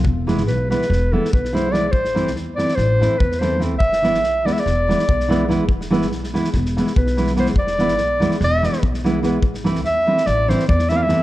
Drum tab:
SD |--ooo-ooo--o-oo-o-|-oooo-ooo-o--oo-o-|-oooo-ooo-oo-oo-o-|-ooooooooooo-ooooo|
BD |o-----------o-----|o-----------o-----|o-----------o-----|o-------o---o-----|

SD |-oooo-ooo-oo-oo-o-|-oooo--oo-oo-oo-o-|
BD |o-----------o-----|o-----------o-----|